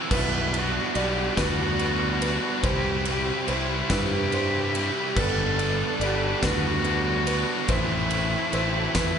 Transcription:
Already playing: A3 C4 C5
0.10 B1 B2 G3 B3 D4 E4 B4 D5 F#5 B5, kick, crash
0.52 G3 B3 D4, ride
0.58 G3 B3 F#4
0.95 B1 B2 G3 B3 D4 D5, ride
1.00 G4
1.37 D2 G3 B3 D4 B4, kick, snare, ride
1.41 F#4
1.78 B2 G3 B3 D4, ride
2.21 G3 B3 D4 B4, ride
2.63 C2 C3 G3 C4 E4 C5 E5, kick, ride
2.68 G4
3.05 G3 C4 E4, ride
3.09 G4
3.47 C2 C3 G3 C4 E4 C5, ride
3.52 E4
3.89 G2 G3 C4 E4 G4 B4, kick, snare, ride
4.32 C3 G3 C4 E4 C5, ride
4.74 G3 C4 E4, ride
5.16 G1 G2 D3 G3 B3 D4 A4 B4 D5 F#5 B5, kick, crash
5.58 G3 B3 D4, ride
6.00 G1 D3 G3 B3 D4 G4 D5, ride
6.42 D2 G3 B3 D4 F#4 B4, kick, snare, ride
6.84 D3 G3 B3 D4, ride
7.26 G3 B3 D4 B4, ride
7.68 A1 A2 E3 A3 C4 E4 A4 C5 E5 G5 A5, kick, ride
8.11 A3 C4 E4, ride
8.52 A1 E3 A3 C4 E4 C5, ride
8.95 E2 A3 C4 E4 B4, kick, snare, ride

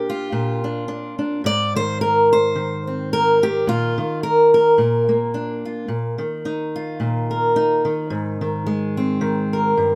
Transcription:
Already playing: A#2 D4 G4
0.10 F4
0.32 A#2
0.64 D4
0.88 D4
1.19 D4
1.44 G#2 D5
1.75 D#3 C5
2.01 A#4
2.33 C5
2.55 D#3
2.87 C4
3.13 A#4
3.43 D#3 G4
3.67 A#2 F4
3.98 D#3
4.23 A#4
4.54 A#4
4.78 A#2
5.09 A#3
5.34 D4
5.65 F4
5.88 A#2
6.18 D#3
6.45 D#4
6.76 F4
7.00 A#2
7.31 A#4
7.56 D#4
7.85 D#3
8.10 G#2
8.41 D#3
8.66 G#3
8.97 C4
9.21 D#3
9.53 A#4
9.77 G2

